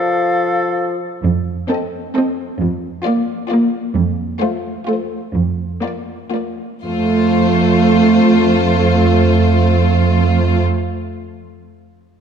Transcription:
0, 0, Header, 1, 8, 480
1, 0, Start_track
1, 0, Key_signature, -1, "major"
1, 0, Tempo, 481541
1, 1220, Time_signature, 3, 2, 24, 8
1, 1686, Tempo, 452830
1, 4566, Tempo, 470958
1, 6006, Tempo, 504202
1, 12084, End_track
2, 0, Start_track
2, 0, Title_t, "Flute"
2, 0, Program_c, 0, 73
2, 0, Note_on_c, 0, 77, 52
2, 729, Note_off_c, 0, 77, 0
2, 12084, End_track
3, 0, Start_track
3, 0, Title_t, "Violin section"
3, 0, Program_c, 1, 48
3, 1688, Note_on_c, 1, 75, 40
3, 2049, Note_off_c, 1, 75, 0
3, 2172, Note_on_c, 1, 75, 36
3, 2533, Note_off_c, 1, 75, 0
3, 3121, Note_on_c, 1, 74, 44
3, 3479, Note_off_c, 1, 74, 0
3, 3597, Note_on_c, 1, 74, 41
3, 3957, Note_off_c, 1, 74, 0
3, 4561, Note_on_c, 1, 72, 45
3, 4913, Note_off_c, 1, 72, 0
3, 5035, Note_on_c, 1, 72, 34
3, 5391, Note_off_c, 1, 72, 0
3, 6002, Note_on_c, 1, 74, 36
3, 6356, Note_off_c, 1, 74, 0
3, 6484, Note_on_c, 1, 74, 25
3, 6852, Note_off_c, 1, 74, 0
3, 6980, Note_on_c, 1, 72, 34
3, 10592, Note_off_c, 1, 72, 0
3, 12084, End_track
4, 0, Start_track
4, 0, Title_t, "Oboe"
4, 0, Program_c, 2, 68
4, 0, Note_on_c, 2, 69, 39
4, 986, Note_off_c, 2, 69, 0
4, 12084, End_track
5, 0, Start_track
5, 0, Title_t, "Violin section"
5, 0, Program_c, 3, 48
5, 1675, Note_on_c, 3, 69, 37
5, 2041, Note_off_c, 3, 69, 0
5, 2155, Note_on_c, 3, 69, 35
5, 2524, Note_off_c, 3, 69, 0
5, 3119, Note_on_c, 3, 65, 40
5, 3477, Note_off_c, 3, 65, 0
5, 3604, Note_on_c, 3, 65, 40
5, 3961, Note_off_c, 3, 65, 0
5, 4558, Note_on_c, 3, 65, 39
5, 4911, Note_off_c, 3, 65, 0
5, 5031, Note_on_c, 3, 65, 35
5, 5388, Note_off_c, 3, 65, 0
5, 6002, Note_on_c, 3, 65, 34
5, 6357, Note_off_c, 3, 65, 0
5, 6477, Note_on_c, 3, 65, 27
5, 6849, Note_off_c, 3, 65, 0
5, 6973, Note_on_c, 3, 65, 32
5, 10588, Note_off_c, 3, 65, 0
5, 12084, End_track
6, 0, Start_track
6, 0, Title_t, "Viola section"
6, 0, Program_c, 4, 48
6, 1683, Note_on_c, 4, 60, 36
6, 2046, Note_off_c, 4, 60, 0
6, 2169, Note_on_c, 4, 60, 41
6, 2531, Note_off_c, 4, 60, 0
6, 3121, Note_on_c, 4, 58, 42
6, 3478, Note_off_c, 4, 58, 0
6, 3599, Note_on_c, 4, 58, 45
6, 3958, Note_off_c, 4, 58, 0
6, 4575, Note_on_c, 4, 57, 41
6, 4920, Note_off_c, 4, 57, 0
6, 5048, Note_on_c, 4, 57, 39
6, 5397, Note_off_c, 4, 57, 0
6, 6013, Note_on_c, 4, 58, 31
6, 6362, Note_off_c, 4, 58, 0
6, 6497, Note_on_c, 4, 58, 30
6, 6859, Note_off_c, 4, 58, 0
6, 6988, Note_on_c, 4, 57, 33
6, 10596, Note_off_c, 4, 57, 0
6, 12084, End_track
7, 0, Start_track
7, 0, Title_t, "Bassoon"
7, 0, Program_c, 5, 70
7, 0, Note_on_c, 5, 53, 50
7, 960, Note_off_c, 5, 53, 0
7, 12084, End_track
8, 0, Start_track
8, 0, Title_t, "Cello section"
8, 0, Program_c, 6, 48
8, 1232, Note_on_c, 6, 41, 44
8, 1595, Note_off_c, 6, 41, 0
8, 2659, Note_on_c, 6, 41, 47
8, 3034, Note_off_c, 6, 41, 0
8, 4079, Note_on_c, 6, 41, 49
8, 4463, Note_off_c, 6, 41, 0
8, 5521, Note_on_c, 6, 41, 40
8, 5906, Note_off_c, 6, 41, 0
8, 6980, Note_on_c, 6, 41, 30
8, 10592, Note_off_c, 6, 41, 0
8, 12084, End_track
0, 0, End_of_file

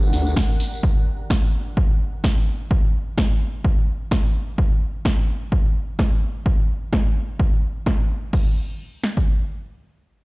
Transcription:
0, 0, Header, 1, 4, 480
1, 0, Start_track
1, 0, Key_signature, -2, "minor"
1, 0, Tempo, 468750
1, 852, Time_signature, 4, 2, 24, 8
1, 10486, End_track
2, 0, Start_track
2, 0, Title_t, "Ambient pad"
2, 0, Program_c, 0, 92
2, 0, Note_on_c, 0, 62, 73
2, 0, Note_on_c, 0, 67, 79
2, 0, Note_on_c, 0, 70, 80
2, 0, Note_on_c, 0, 78, 81
2, 852, Note_off_c, 0, 67, 0
2, 852, Note_off_c, 0, 78, 0
2, 853, Note_off_c, 0, 62, 0
2, 853, Note_off_c, 0, 70, 0
2, 10486, End_track
3, 0, Start_track
3, 0, Title_t, "Wobble bass"
3, 0, Program_c, 1, 39
3, 0, Note_on_c, 1, 31, 92
3, 116, Note_off_c, 1, 31, 0
3, 131, Note_on_c, 1, 38, 97
3, 355, Note_off_c, 1, 38, 0
3, 10486, End_track
4, 0, Start_track
4, 0, Title_t, "Drums"
4, 28, Note_on_c, 9, 54, 27
4, 131, Note_off_c, 9, 54, 0
4, 133, Note_on_c, 9, 46, 94
4, 134, Note_on_c, 9, 54, 103
4, 236, Note_off_c, 9, 46, 0
4, 237, Note_off_c, 9, 54, 0
4, 272, Note_on_c, 9, 54, 41
4, 373, Note_on_c, 9, 36, 107
4, 375, Note_off_c, 9, 54, 0
4, 377, Note_on_c, 9, 38, 106
4, 379, Note_on_c, 9, 54, 52
4, 475, Note_off_c, 9, 36, 0
4, 480, Note_off_c, 9, 38, 0
4, 481, Note_off_c, 9, 54, 0
4, 512, Note_on_c, 9, 54, 24
4, 612, Note_off_c, 9, 54, 0
4, 612, Note_on_c, 9, 54, 87
4, 614, Note_on_c, 9, 46, 105
4, 714, Note_off_c, 9, 54, 0
4, 716, Note_off_c, 9, 46, 0
4, 755, Note_on_c, 9, 54, 39
4, 853, Note_on_c, 9, 36, 109
4, 857, Note_off_c, 9, 54, 0
4, 955, Note_off_c, 9, 36, 0
4, 1333, Note_on_c, 9, 36, 115
4, 1337, Note_on_c, 9, 38, 114
4, 1435, Note_off_c, 9, 36, 0
4, 1439, Note_off_c, 9, 38, 0
4, 1813, Note_on_c, 9, 36, 114
4, 1915, Note_off_c, 9, 36, 0
4, 2292, Note_on_c, 9, 36, 114
4, 2296, Note_on_c, 9, 38, 102
4, 2395, Note_off_c, 9, 36, 0
4, 2399, Note_off_c, 9, 38, 0
4, 2772, Note_on_c, 9, 36, 111
4, 2875, Note_off_c, 9, 36, 0
4, 3252, Note_on_c, 9, 36, 111
4, 3256, Note_on_c, 9, 38, 109
4, 3355, Note_off_c, 9, 36, 0
4, 3358, Note_off_c, 9, 38, 0
4, 3732, Note_on_c, 9, 36, 108
4, 3835, Note_off_c, 9, 36, 0
4, 4212, Note_on_c, 9, 36, 106
4, 4216, Note_on_c, 9, 38, 101
4, 4315, Note_off_c, 9, 36, 0
4, 4318, Note_off_c, 9, 38, 0
4, 4692, Note_on_c, 9, 36, 99
4, 4795, Note_off_c, 9, 36, 0
4, 5173, Note_on_c, 9, 36, 109
4, 5177, Note_on_c, 9, 38, 114
4, 5275, Note_off_c, 9, 36, 0
4, 5279, Note_off_c, 9, 38, 0
4, 5653, Note_on_c, 9, 36, 101
4, 5755, Note_off_c, 9, 36, 0
4, 6133, Note_on_c, 9, 36, 102
4, 6136, Note_on_c, 9, 38, 100
4, 6235, Note_off_c, 9, 36, 0
4, 6238, Note_off_c, 9, 38, 0
4, 6613, Note_on_c, 9, 36, 101
4, 6715, Note_off_c, 9, 36, 0
4, 7093, Note_on_c, 9, 36, 108
4, 7096, Note_on_c, 9, 38, 114
4, 7195, Note_off_c, 9, 36, 0
4, 7198, Note_off_c, 9, 38, 0
4, 7572, Note_on_c, 9, 36, 109
4, 7675, Note_off_c, 9, 36, 0
4, 8052, Note_on_c, 9, 36, 103
4, 8056, Note_on_c, 9, 38, 104
4, 8155, Note_off_c, 9, 36, 0
4, 8159, Note_off_c, 9, 38, 0
4, 8532, Note_on_c, 9, 36, 99
4, 8532, Note_on_c, 9, 49, 74
4, 8634, Note_off_c, 9, 49, 0
4, 8635, Note_off_c, 9, 36, 0
4, 9252, Note_on_c, 9, 38, 53
4, 9355, Note_off_c, 9, 38, 0
4, 9391, Note_on_c, 9, 36, 68
4, 9494, Note_off_c, 9, 36, 0
4, 10486, End_track
0, 0, End_of_file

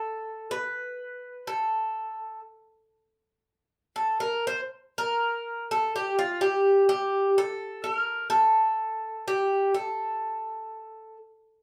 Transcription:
0, 0, Header, 1, 2, 480
1, 0, Start_track
1, 0, Tempo, 946372
1, 21, Time_signature, 2, 2, 24, 8
1, 982, Tempo, 995025
1, 2902, Tempo, 952381
1, 4822, Tempo, 981997
1, 5751, End_track
2, 0, Start_track
2, 0, Title_t, "Bouzouki"
2, 0, Program_c, 0, 25
2, 0, Note_on_c, 0, 69, 90
2, 257, Note_off_c, 0, 69, 0
2, 259, Note_on_c, 0, 71, 89
2, 746, Note_off_c, 0, 71, 0
2, 748, Note_on_c, 0, 69, 76
2, 1202, Note_off_c, 0, 69, 0
2, 1957, Note_on_c, 0, 69, 71
2, 2073, Note_off_c, 0, 69, 0
2, 2075, Note_on_c, 0, 70, 85
2, 2196, Note_off_c, 0, 70, 0
2, 2204, Note_on_c, 0, 72, 92
2, 2267, Note_off_c, 0, 72, 0
2, 2451, Note_on_c, 0, 70, 95
2, 2801, Note_off_c, 0, 70, 0
2, 2803, Note_on_c, 0, 69, 82
2, 2902, Note_off_c, 0, 69, 0
2, 2922, Note_on_c, 0, 67, 87
2, 3024, Note_off_c, 0, 67, 0
2, 3038, Note_on_c, 0, 65, 83
2, 3151, Note_on_c, 0, 67, 85
2, 3153, Note_off_c, 0, 65, 0
2, 3368, Note_off_c, 0, 67, 0
2, 3392, Note_on_c, 0, 67, 93
2, 3631, Note_off_c, 0, 67, 0
2, 3639, Note_on_c, 0, 69, 96
2, 3868, Note_off_c, 0, 69, 0
2, 3870, Note_on_c, 0, 70, 81
2, 4100, Note_off_c, 0, 70, 0
2, 4102, Note_on_c, 0, 69, 96
2, 4593, Note_off_c, 0, 69, 0
2, 4595, Note_on_c, 0, 67, 88
2, 4829, Note_off_c, 0, 67, 0
2, 4831, Note_on_c, 0, 69, 73
2, 5525, Note_off_c, 0, 69, 0
2, 5751, End_track
0, 0, End_of_file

